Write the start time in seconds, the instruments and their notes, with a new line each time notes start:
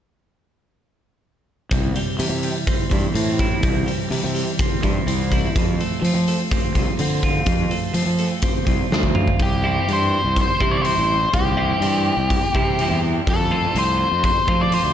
1.71 fingered electric bass C2, clean electric guitar C3, kick, open hi-hat
1.96 clean electric guitar G3, open hi-hat
2.19 fingered electric bass C3, clean electric guitar E3, open hi-hat
2.30 fingered electric bass C3
2.43 clean electric guitar G3, open hi-hat
2.67 clean electric guitar C4, kick, open hi-hat
2.91 fingered electric bass G2, clean electric guitar E3, kick, open hi-hat
3.15 fingered electric bass A2, clean electric guitar C4, open hi-hat
3.39 clean electric guitar E4, kick, open hi-hat
3.63 fingered electric bass C2, clean electric guitar C3, kick, open hi-hat
3.87 clean electric guitar G3, open hi-hat
4.10 fingered electric bass C3, clean electric guitar E3, open hi-hat
4.24 fingered electric bass C3
4.35 clean electric guitar G3, open hi-hat
4.59 clean electric guitar C4, kick, open hi-hat
4.82 fingered electric bass G2, clean electric guitar E3, kick, open hi-hat
5.06 fingered electric bass C2, clean electric guitar C4, open hi-hat
5.32 clean electric guitar E4, kick, open hi-hat
5.56 fingered electric bass F2, clean electric guitar F3, kick, open hi-hat
5.81 clean electric guitar A3, open hi-hat
6.02 fingered electric bass F3, clean electric guitar F3, open hi-hat
6.15 fingered electric bass F3
6.28 clean electric guitar A3, open hi-hat
6.51 clean electric guitar C4, kick, open hi-hat
6.75 fingered electric bass C2, clean electric guitar F3, kick, open hi-hat
6.99 fingered electric bass D3, clean electric guitar C4, open hi-hat
7.23 clean electric guitar F4, kick, open hi-hat
7.46 fingered electric bass F2, clean electric guitar F3, kick, open hi-hat
7.71 clean electric guitar A3, open hi-hat
7.94 fingered electric bass F3, clean electric guitar F3, open hi-hat
8.06 fingered electric bass F3
8.19 clean electric guitar A3, open hi-hat
8.42 clean electric guitar C4, kick, open hi-hat
8.67 fingered electric bass C2, clean electric guitar F3, kick, open hi-hat
8.91 fingered electric bass D2, clean electric guitar C4, snare
9.03 kick
9.15 clean electric guitar F4, mid tom
9.28 kick
9.40 fingered electric bass C2, lead electric guitar G4, kick, open hi-hat
9.64 clean electric guitar E3 G3 C4 E4
9.88 fingered electric bass G2, clean electric guitar E3 G3 C4 E4, open hi-hat
9.93 lead electric guitar C5
10.24 fingered electric bass C2
10.36 kick, open hi-hat
10.41 lead electric guitar C5
10.60 fingered electric bass C3, clean electric guitar E3 G3 C4 E4, kick
10.71 lead electric guitar D5
10.82 clean electric guitar E3 G3 C4, lead electric guitar C5, open hi-hat
10.86 clean electric guitar E4
10.98 fingered electric bass A1
11.33 fingered electric bass C2, lead electric guitar G4, kick, open hi-hat
11.57 clean electric guitar E3 G3 C4 E4
11.80 fingered electric bass G2, clean electric guitar E3 G3 C4 E4, open hi-hat
12.17 fingered electric bass C2
12.30 kick, open hi-hat
12.55 fingered electric bass C3, clean electric guitar E3 G3 C4 E4, kick
12.79 clean electric guitar E3 G3 C4 E4, open hi-hat
12.90 fingered electric bass E2
13.27 fingered electric bass F2, lead electric guitar A4, kick, open hi-hat
13.51 clean electric guitar F3 A3 C4 F4
13.75 fingered electric bass C2, clean electric guitar F3 A3 C4 F4, lead electric guitar C5, open hi-hat
14.12 fingered electric bass F2
14.24 lead electric guitar C5, kick, open hi-hat
14.48 fingered electric bass F3, clean electric guitar F3 A3 C4 F4, kick
14.61 lead electric guitar D5
14.72 clean electric guitar F3 A3 C4 F4, lead electric guitar C5, open hi-hat
14.84 fingered electric bass D2